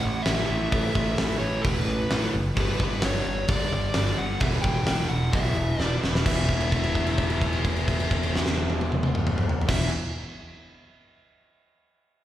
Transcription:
Already playing: overdriven electric guitar A2 E3 A3, lead electric guitar F#5
0.05 picked electric bass A1
0.23 overdriven electric guitar A2 E3, lead electric guitar E5, snare, open hi-hat
0.27 picked electric bass A1, overdriven electric guitar A3
0.38 snare
0.46 overdriven electric guitar A2 E3, lead electric guitar E5
0.50 picked electric bass A1, overdriven electric guitar A3
0.72 picked electric bass A1, kick, open hi-hat
0.95 picked electric bass A1, kick
1.18 picked electric bass A1, snare, open hi-hat
1.39 picked electric bass A1, overdriven electric guitar E3 A3, lead electric guitar C#5
1.44 overdriven electric guitar A2
1.62 picked electric bass E1, lead electric guitar B4, kick, open hi-hat
1.86 picked electric bass A1, snare
2.11 picked electric bass A1, overdriven electric guitar A2 E3 A3, snare, open hi-hat
2.22 snare
2.34 picked electric bass F#1
2.55 picked electric bass G1, overdriven electric guitar G2 D3 G3, kick, open hi-hat
2.60 lead electric guitar B4
2.80 kick
2.84 lead electric guitar B4
3.02 picked electric bass G1, lead electric guitar C#5, snare, open hi-hat
3.27 picked electric bass G1
3.47 picked electric bass G1, overdriven electric guitar G2 D3 G3, lead electric guitar D5, kick, open hi-hat
3.73 picked electric bass G1, lead electric guitar D5
3.94 picked electric bass G1, snare, open hi-hat
4.05 snare
4.18 picked electric bass G1, overdriven electric guitar G2 D3 G3, lead electric guitar F#5
4.40 picked electric bass E1, overdriven electric guitar E2 B2 E3, lead electric guitar E5, kick, open hi-hat
4.62 picked electric bass E1, lead electric guitar G5, kick
4.86 picked electric bass E1, snare, open hi-hat
5.09 picked electric bass E1, lead electric guitar F#5
5.32 picked electric bass B1, overdriven electric guitar E2 B2 E3, lead electric guitar E5, kick, open hi-hat
5.55 picked electric bass E1
5.79 picked electric bass E1, lead electric guitar D5, snare
6.02 picked electric bass E1, overdriven electric guitar E2 B2 E3, snare
6.15 snare
6.24 picked electric bass E1, overdriven electric guitar E2 B2, lead electric guitar E5, kick, crash
6.28 overdriven electric guitar E3
6.48 kick, crash
6.61 crash
6.72 kick, crash
6.84 crash
6.95 kick, crash
7.07 crash
7.18 kick, crash
7.30 crash
7.42 kick, crash
7.53 crash
7.65 kick, crash
7.76 crash
7.88 kick, crash
8.00 crash
8.11 kick, crash
8.23 crash
8.36 snare
8.46 snare
8.58 high tom
8.70 high tom
8.81 high tom
8.92 mid tom
9.03 mid tom
9.15 mid tom
9.27 mid tom
9.38 mid tom
9.49 floor tom
9.61 floor tom
9.66 picked electric bass E1, overdriven electric guitar E2 B2, lead electric guitar E5, kick, snare, crash
9.71 overdriven electric guitar E3

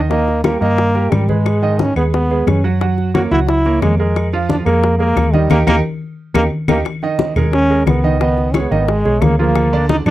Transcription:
Already playing: fingered electric bass D#2
0.10 grand piano D#3 D#4 D#5, trombone A#3, high bongo, high conga
0.27 high bongo, high conga
0.44 grand piano G3 G4 A#4, trombone A#3, high bongo, high conga, claves
0.60 fingered electric bass G2, grand piano D#3 D#4 D#5, trombone A#3, high bongo, high conga
0.78 high bongo, high conga
0.95 grand piano G3 G4 A#4, high bongo, high conga
1.11 fingered electric bass G#2, trombone G3, high bongo, low bongo, high conga, claves
1.29 trombone G#3, grand piano G#3 G#4 B4, high conga
1.46 high bongo, high conga, claves
1.62 grand piano D#3 D#4 D#5, high conga
1.79 trombone C#4, high bongo, high conga
1.96 fingered electric bass D#2, grand piano G#3 G#4 B4, trombone B3, high conga, claves
2.13 trombone B3, high bongo, high conga
2.30 grand piano G#3 G#4 B4, high conga
2.47 fingered electric bass F#2, trombone C#4, high bongo, low bongo, high conga, claves
2.64 grand piano F#3 F#4 F#5
2.81 grand piano F#3 F#4 F#5, high bongo, high conga
2.98 high bongo, high conga
3.14 grand piano A#3 A#4 C#5, trombone F#4, high bongo, high conga, claves
3.31 fingered electric bass C#2, grand piano F#3 F#4 F#5, trombone E4, high bongo, high conga
3.48 trombone E4, high bongo, high conga
3.65 grand piano A#3 A#4 C#5, high bongo, high conga
3.82 fingered electric bass F2, trombone G#3, high bongo, low bongo, high conga, claves
3.99 trombone G#3, grand piano G#3 G#4 A#4
4.16 high bongo, high conga, claves
4.33 grand piano F3 F4 F5, high conga
4.49 trombone D4, high bongo, high conga
4.66 fingered electric bass F2, grand piano G#3 G#4 A#4, trombone A#3, high conga, claves
4.83 high bongo, high conga
4.98 grand piano G#3 G#4 A#4, trombone A#3, high conga
5.16 fingered electric bass D#2, high bongo, low bongo, high conga, claves
5.33 grand piano D#3 D#4 D#5, trombone G3, high conga
5.50 fingered electric bass D#2, trombone A#3, grand piano D#4 G4 A#4, low bongo, high conga, claves
5.67 fingered electric bass D#2, trombone A#3, grand piano D#4 G4 A#4, low bongo, high conga, claves
6.34 fingered electric bass D#2, trombone A#3, grand piano D#4 G4 A#4, low bongo, high conga, claves
6.68 fingered electric bass D#2, trombone A#3, grand piano D#4 G4 A#4, low bongo, high conga, claves
6.85 high bongo, high conga, claves
7.02 grand piano D#3 D#4 D#5, high conga
7.19 high bongo, high conga
7.36 fingered electric bass D#2, grand piano G#3 G#4 A#4, high conga, low conga, claves
7.53 trombone C#4, high bongo, high conga
7.70 grand piano G#3 G#4 A#4, high conga
7.87 fingered electric bass C#2, trombone B3, high bongo, low bongo, high conga, claves
8.04 grand piano D#3 D#4 D#5
8.20 grand piano D#3 D#4 D#5, trombone B3, high bongo, high conga
8.37 high bongo, high conga
8.51 grand piano G#3 G#4 C#5, trombone C#4, high bongo, high conga, claves
8.61 trombone B3
8.70 fingered electric bass G#1, grand piano D#3 D#4 D#5, trombone A#3, high bongo, high conga
8.80 trombone B3
8.88 trombone G#3, high bongo, high conga
9.05 fingered electric bass B1, grand piano G#3 G#4 C#5, high bongo, high conga
9.21 fingered electric bass D2, trombone A#3, high bongo, low bongo, high conga, claves
9.39 grand piano F3 F4 G#4, trombone A#3
9.56 high bongo, high conga, claves
9.73 grand piano D3 D4 D5, high conga
9.89 trombone D#4, high bongo, high conga
10.06 fingered electric bass F2, grand piano F3 F4 G#4, trombone D4, high conga, low conga, claves

